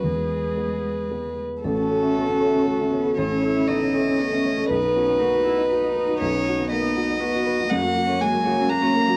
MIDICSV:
0, 0, Header, 1, 6, 480
1, 0, Start_track
1, 0, Tempo, 536673
1, 30, Time_signature, 3, 2, 24, 8
1, 1470, Tempo, 511945
1, 2910, Tempo, 502513
1, 8631, End_track
2, 0, Start_track
2, 0, Title_t, "Vibraphone"
2, 0, Program_c, 0, 11
2, 1470, Note_on_c, 0, 69, 67
2, 1543, Note_off_c, 0, 69, 0
2, 1583, Note_on_c, 0, 81, 46
2, 1658, Note_off_c, 0, 81, 0
2, 1826, Note_on_c, 0, 76, 48
2, 1900, Note_off_c, 0, 76, 0
2, 1942, Note_on_c, 0, 69, 64
2, 2018, Note_off_c, 0, 69, 0
2, 2065, Note_on_c, 0, 73, 46
2, 2140, Note_off_c, 0, 73, 0
2, 2187, Note_on_c, 0, 76, 46
2, 2260, Note_off_c, 0, 76, 0
2, 2308, Note_on_c, 0, 73, 45
2, 2381, Note_off_c, 0, 73, 0
2, 2422, Note_on_c, 0, 69, 62
2, 2497, Note_off_c, 0, 69, 0
2, 2545, Note_on_c, 0, 76, 46
2, 2619, Note_off_c, 0, 76, 0
2, 2782, Note_on_c, 0, 81, 45
2, 2856, Note_off_c, 0, 81, 0
2, 2903, Note_on_c, 0, 69, 65
2, 2978, Note_off_c, 0, 69, 0
2, 3027, Note_on_c, 0, 81, 47
2, 3101, Note_off_c, 0, 81, 0
2, 3265, Note_on_c, 0, 76, 48
2, 3341, Note_off_c, 0, 76, 0
2, 3384, Note_on_c, 0, 69, 69
2, 3460, Note_off_c, 0, 69, 0
2, 3513, Note_on_c, 0, 73, 47
2, 3587, Note_off_c, 0, 73, 0
2, 3633, Note_on_c, 0, 76, 49
2, 3707, Note_off_c, 0, 76, 0
2, 3752, Note_on_c, 0, 73, 50
2, 3827, Note_off_c, 0, 73, 0
2, 3869, Note_on_c, 0, 69, 61
2, 3945, Note_off_c, 0, 69, 0
2, 3989, Note_on_c, 0, 76, 51
2, 4065, Note_off_c, 0, 76, 0
2, 4233, Note_on_c, 0, 81, 49
2, 4308, Note_off_c, 0, 81, 0
2, 4356, Note_on_c, 0, 71, 68
2, 4429, Note_off_c, 0, 71, 0
2, 4476, Note_on_c, 0, 83, 49
2, 4549, Note_off_c, 0, 83, 0
2, 4712, Note_on_c, 0, 78, 56
2, 4785, Note_off_c, 0, 78, 0
2, 4835, Note_on_c, 0, 71, 68
2, 4907, Note_off_c, 0, 71, 0
2, 4953, Note_on_c, 0, 75, 51
2, 5026, Note_off_c, 0, 75, 0
2, 5070, Note_on_c, 0, 78, 53
2, 5144, Note_off_c, 0, 78, 0
2, 5189, Note_on_c, 0, 75, 54
2, 5264, Note_off_c, 0, 75, 0
2, 5313, Note_on_c, 0, 71, 69
2, 5387, Note_off_c, 0, 71, 0
2, 5435, Note_on_c, 0, 78, 54
2, 5509, Note_off_c, 0, 78, 0
2, 5673, Note_on_c, 0, 83, 52
2, 5748, Note_off_c, 0, 83, 0
2, 5795, Note_on_c, 0, 71, 72
2, 5871, Note_off_c, 0, 71, 0
2, 5915, Note_on_c, 0, 83, 55
2, 5990, Note_off_c, 0, 83, 0
2, 6156, Note_on_c, 0, 78, 61
2, 6230, Note_off_c, 0, 78, 0
2, 6269, Note_on_c, 0, 71, 78
2, 6345, Note_off_c, 0, 71, 0
2, 6387, Note_on_c, 0, 75, 61
2, 6463, Note_off_c, 0, 75, 0
2, 6509, Note_on_c, 0, 78, 57
2, 6584, Note_off_c, 0, 78, 0
2, 6628, Note_on_c, 0, 75, 58
2, 6704, Note_off_c, 0, 75, 0
2, 6748, Note_on_c, 0, 71, 76
2, 6823, Note_off_c, 0, 71, 0
2, 6869, Note_on_c, 0, 78, 59
2, 6943, Note_off_c, 0, 78, 0
2, 7106, Note_on_c, 0, 83, 62
2, 7181, Note_off_c, 0, 83, 0
2, 7224, Note_on_c, 0, 66, 82
2, 7299, Note_off_c, 0, 66, 0
2, 7340, Note_on_c, 0, 78, 61
2, 7416, Note_off_c, 0, 78, 0
2, 7578, Note_on_c, 0, 73, 65
2, 7653, Note_off_c, 0, 73, 0
2, 7701, Note_on_c, 0, 66, 88
2, 7775, Note_off_c, 0, 66, 0
2, 7817, Note_on_c, 0, 70, 64
2, 7893, Note_off_c, 0, 70, 0
2, 7932, Note_on_c, 0, 73, 67
2, 8009, Note_off_c, 0, 73, 0
2, 8053, Note_on_c, 0, 70, 61
2, 8130, Note_off_c, 0, 70, 0
2, 8177, Note_on_c, 0, 66, 83
2, 8253, Note_off_c, 0, 66, 0
2, 8298, Note_on_c, 0, 73, 65
2, 8375, Note_off_c, 0, 73, 0
2, 8535, Note_on_c, 0, 78, 65
2, 8612, Note_off_c, 0, 78, 0
2, 8631, End_track
3, 0, Start_track
3, 0, Title_t, "Violin"
3, 0, Program_c, 1, 40
3, 0, Note_on_c, 1, 71, 58
3, 1250, Note_off_c, 1, 71, 0
3, 1459, Note_on_c, 1, 69, 74
3, 2868, Note_off_c, 1, 69, 0
3, 2909, Note_on_c, 1, 73, 73
3, 3380, Note_on_c, 1, 75, 74
3, 3395, Note_off_c, 1, 73, 0
3, 4351, Note_off_c, 1, 75, 0
3, 4357, Note_on_c, 1, 71, 87
3, 5771, Note_off_c, 1, 71, 0
3, 5800, Note_on_c, 1, 73, 85
3, 6273, Note_off_c, 1, 73, 0
3, 6282, Note_on_c, 1, 75, 85
3, 7228, Note_on_c, 1, 78, 103
3, 7242, Note_off_c, 1, 75, 0
3, 7710, Note_on_c, 1, 80, 92
3, 7724, Note_off_c, 1, 78, 0
3, 8178, Note_on_c, 1, 82, 105
3, 8193, Note_off_c, 1, 80, 0
3, 8631, Note_off_c, 1, 82, 0
3, 8631, End_track
4, 0, Start_track
4, 0, Title_t, "Grand piano"
4, 0, Program_c, 2, 0
4, 0, Control_c, 2, 64, 127
4, 32, Note_on_c, 2, 40, 41
4, 47, Control_c, 2, 64, 0
4, 207, Control_c, 2, 64, 127
4, 499, Note_off_c, 2, 40, 0
4, 509, Note_on_c, 2, 56, 31
4, 513, Note_on_c, 2, 59, 31
4, 517, Note_on_c, 2, 71, 34
4, 955, Note_off_c, 2, 56, 0
4, 956, Note_off_c, 2, 59, 0
4, 959, Note_off_c, 2, 71, 0
4, 992, Note_on_c, 2, 56, 30
4, 996, Note_on_c, 2, 59, 31
4, 999, Note_on_c, 2, 71, 32
4, 1435, Note_off_c, 2, 56, 0
4, 1437, Note_off_c, 2, 59, 0
4, 1438, Note_off_c, 2, 71, 0
4, 1471, Note_on_c, 2, 33, 51
4, 1487, Control_c, 2, 64, 0
4, 1598, Note_on_c, 2, 61, 37
4, 1643, Control_c, 2, 64, 127
4, 1715, Note_on_c, 2, 69, 40
4, 1788, Note_off_c, 2, 61, 0
4, 1835, Note_on_c, 2, 61, 41
4, 1907, Note_off_c, 2, 69, 0
4, 1958, Note_on_c, 2, 59, 37
4, 2026, Note_off_c, 2, 61, 0
4, 2076, Note_off_c, 2, 59, 0
4, 2187, Note_on_c, 2, 69, 41
4, 2316, Note_on_c, 2, 61, 40
4, 2381, Note_off_c, 2, 69, 0
4, 2506, Note_off_c, 2, 61, 0
4, 2561, Note_on_c, 2, 61, 42
4, 2676, Note_on_c, 2, 73, 45
4, 2748, Note_off_c, 2, 61, 0
4, 2792, Note_on_c, 2, 69, 41
4, 2865, Note_off_c, 2, 73, 0
4, 2874, Note_off_c, 2, 33, 0
4, 2912, Note_on_c, 2, 33, 52
4, 2928, Control_c, 2, 64, 0
4, 2984, Note_off_c, 2, 69, 0
4, 3029, Note_on_c, 2, 61, 40
4, 3100, Control_c, 2, 64, 127
4, 3153, Note_on_c, 2, 69, 41
4, 3225, Note_off_c, 2, 61, 0
4, 3277, Note_on_c, 2, 61, 43
4, 3347, Note_off_c, 2, 69, 0
4, 3397, Note_on_c, 2, 59, 38
4, 3470, Note_off_c, 2, 61, 0
4, 3518, Note_off_c, 2, 59, 0
4, 3522, Note_on_c, 2, 61, 37
4, 3633, Note_on_c, 2, 69, 47
4, 3713, Note_off_c, 2, 61, 0
4, 3762, Note_on_c, 2, 61, 42
4, 3830, Note_off_c, 2, 69, 0
4, 3882, Note_on_c, 2, 69, 46
4, 3954, Note_off_c, 2, 61, 0
4, 4004, Note_on_c, 2, 61, 46
4, 4075, Note_off_c, 2, 69, 0
4, 4126, Note_on_c, 2, 73, 46
4, 4196, Note_off_c, 2, 61, 0
4, 4243, Note_on_c, 2, 69, 46
4, 4317, Note_off_c, 2, 73, 0
4, 4325, Note_off_c, 2, 33, 0
4, 4361, Note_on_c, 2, 35, 55
4, 4363, Note_off_c, 2, 69, 0
4, 4379, Control_c, 2, 64, 0
4, 4485, Note_on_c, 2, 59, 41
4, 4547, Control_c, 2, 64, 127
4, 4608, Note_on_c, 2, 66, 44
4, 4673, Note_off_c, 2, 59, 0
4, 4729, Note_on_c, 2, 59, 44
4, 4794, Note_off_c, 2, 66, 0
4, 4841, Note_on_c, 2, 58, 41
4, 4914, Note_off_c, 2, 59, 0
4, 4956, Note_on_c, 2, 59, 41
4, 4958, Note_off_c, 2, 58, 0
4, 5075, Note_on_c, 2, 66, 46
4, 5148, Note_off_c, 2, 59, 0
4, 5202, Note_on_c, 2, 63, 45
4, 5268, Note_off_c, 2, 66, 0
4, 5324, Note_on_c, 2, 66, 47
4, 5392, Note_off_c, 2, 63, 0
4, 5452, Note_on_c, 2, 63, 49
4, 5514, Note_off_c, 2, 66, 0
4, 5568, Note_on_c, 2, 71, 50
4, 5640, Note_off_c, 2, 63, 0
4, 5686, Note_on_c, 2, 66, 49
4, 5759, Note_off_c, 2, 71, 0
4, 5764, Note_off_c, 2, 35, 0
4, 5810, Note_on_c, 2, 35, 60
4, 5823, Control_c, 2, 64, 0
4, 5878, Note_off_c, 2, 66, 0
4, 5938, Note_on_c, 2, 59, 47
4, 5959, Control_c, 2, 64, 127
4, 6064, Note_on_c, 2, 66, 47
4, 6124, Note_off_c, 2, 59, 0
4, 6174, Note_on_c, 2, 59, 49
4, 6246, Note_off_c, 2, 66, 0
4, 6297, Note_on_c, 2, 58, 45
4, 6360, Note_off_c, 2, 59, 0
4, 6408, Note_on_c, 2, 59, 48
4, 6409, Note_off_c, 2, 58, 0
4, 6524, Note_on_c, 2, 66, 54
4, 6595, Note_off_c, 2, 59, 0
4, 6652, Note_on_c, 2, 63, 52
4, 6713, Note_off_c, 2, 66, 0
4, 6761, Note_on_c, 2, 66, 56
4, 6837, Note_off_c, 2, 63, 0
4, 6884, Note_on_c, 2, 63, 52
4, 6951, Note_off_c, 2, 66, 0
4, 7005, Note_on_c, 2, 71, 55
4, 7072, Note_off_c, 2, 63, 0
4, 7134, Note_on_c, 2, 66, 54
4, 7192, Note_off_c, 2, 71, 0
4, 7201, Note_off_c, 2, 35, 0
4, 7239, Note_on_c, 2, 42, 72
4, 7244, Note_off_c, 2, 66, 0
4, 7253, Control_c, 2, 64, 0
4, 7359, Note_on_c, 2, 58, 51
4, 7410, Control_c, 2, 64, 127
4, 7485, Note_on_c, 2, 66, 53
4, 7546, Note_off_c, 2, 58, 0
4, 7596, Note_on_c, 2, 58, 54
4, 7669, Note_off_c, 2, 66, 0
4, 7716, Note_on_c, 2, 56, 50
4, 7784, Note_off_c, 2, 58, 0
4, 7831, Note_on_c, 2, 58, 47
4, 7832, Note_off_c, 2, 56, 0
4, 7950, Note_on_c, 2, 66, 58
4, 8022, Note_off_c, 2, 58, 0
4, 8078, Note_on_c, 2, 61, 55
4, 8143, Note_off_c, 2, 66, 0
4, 8267, Note_off_c, 2, 61, 0
4, 8312, Note_on_c, 2, 61, 56
4, 8431, Note_on_c, 2, 70, 62
4, 8504, Note_off_c, 2, 61, 0
4, 8552, Note_on_c, 2, 66, 55
4, 8623, Note_off_c, 2, 70, 0
4, 8631, Note_off_c, 2, 42, 0
4, 8631, Note_off_c, 2, 66, 0
4, 8631, End_track
5, 0, Start_track
5, 0, Title_t, "Viola"
5, 0, Program_c, 3, 41
5, 38, Note_on_c, 3, 68, 47
5, 1237, Note_off_c, 3, 68, 0
5, 1482, Note_on_c, 3, 66, 52
5, 2918, Note_on_c, 3, 64, 52
5, 2933, Note_off_c, 3, 66, 0
5, 3889, Note_on_c, 3, 61, 49
5, 3903, Note_off_c, 3, 64, 0
5, 4367, Note_off_c, 3, 61, 0
5, 4371, Note_on_c, 3, 63, 53
5, 4848, Note_on_c, 3, 66, 56
5, 4863, Note_off_c, 3, 63, 0
5, 5076, Note_off_c, 3, 66, 0
5, 5082, Note_on_c, 3, 64, 57
5, 5315, Note_off_c, 3, 64, 0
5, 5331, Note_on_c, 3, 63, 61
5, 6272, Note_off_c, 3, 63, 0
5, 6285, Note_on_c, 3, 63, 61
5, 6751, Note_on_c, 3, 66, 65
5, 6766, Note_off_c, 3, 63, 0
5, 7232, Note_off_c, 3, 66, 0
5, 7236, Note_on_c, 3, 49, 65
5, 7342, Note_on_c, 3, 54, 58
5, 7356, Note_off_c, 3, 49, 0
5, 7459, Note_on_c, 3, 58, 61
5, 7473, Note_off_c, 3, 54, 0
5, 7574, Note_on_c, 3, 61, 59
5, 7588, Note_off_c, 3, 58, 0
5, 7702, Note_on_c, 3, 58, 62
5, 7716, Note_off_c, 3, 61, 0
5, 7824, Note_on_c, 3, 54, 63
5, 7838, Note_off_c, 3, 58, 0
5, 7944, Note_on_c, 3, 49, 62
5, 7958, Note_off_c, 3, 54, 0
5, 8059, Note_on_c, 3, 54, 63
5, 8073, Note_off_c, 3, 49, 0
5, 8174, Note_on_c, 3, 58, 66
5, 8189, Note_off_c, 3, 54, 0
5, 8290, Note_on_c, 3, 61, 59
5, 8304, Note_off_c, 3, 58, 0
5, 8408, Note_on_c, 3, 58, 62
5, 8422, Note_off_c, 3, 61, 0
5, 8542, Note_on_c, 3, 54, 66
5, 8557, Note_off_c, 3, 58, 0
5, 8631, Note_off_c, 3, 54, 0
5, 8631, End_track
6, 0, Start_track
6, 0, Title_t, "Cello"
6, 0, Program_c, 4, 42
6, 23, Note_on_c, 4, 56, 53
6, 1205, Note_off_c, 4, 56, 0
6, 1465, Note_on_c, 4, 61, 51
6, 2433, Note_on_c, 4, 57, 54
6, 2447, Note_off_c, 4, 61, 0
6, 2664, Note_off_c, 4, 57, 0
6, 2670, Note_on_c, 4, 59, 56
6, 2908, Note_on_c, 4, 61, 52
6, 2922, Note_off_c, 4, 59, 0
6, 3155, Note_on_c, 4, 64, 53
6, 3170, Note_off_c, 4, 61, 0
6, 3390, Note_on_c, 4, 63, 52
6, 3405, Note_off_c, 4, 64, 0
6, 3635, Note_on_c, 4, 61, 55
6, 3650, Note_off_c, 4, 63, 0
6, 3884, Note_on_c, 4, 59, 54
6, 3898, Note_off_c, 4, 61, 0
6, 4118, Note_on_c, 4, 57, 61
6, 4132, Note_off_c, 4, 59, 0
6, 4350, Note_off_c, 4, 57, 0
6, 4355, Note_on_c, 4, 59, 55
6, 4598, Note_on_c, 4, 61, 58
6, 4612, Note_off_c, 4, 59, 0
6, 4822, Note_on_c, 4, 63, 51
6, 4836, Note_off_c, 4, 61, 0
6, 5306, Note_off_c, 4, 63, 0
6, 5312, Note_on_c, 4, 63, 56
6, 5790, Note_on_c, 4, 61, 57
6, 5804, Note_off_c, 4, 63, 0
6, 6265, Note_off_c, 4, 61, 0
6, 6271, Note_on_c, 4, 59, 58
6, 6733, Note_off_c, 4, 59, 0
6, 6739, Note_on_c, 4, 59, 64
6, 7211, Note_off_c, 4, 59, 0
6, 7216, Note_on_c, 4, 58, 72
6, 8631, Note_off_c, 4, 58, 0
6, 8631, End_track
0, 0, End_of_file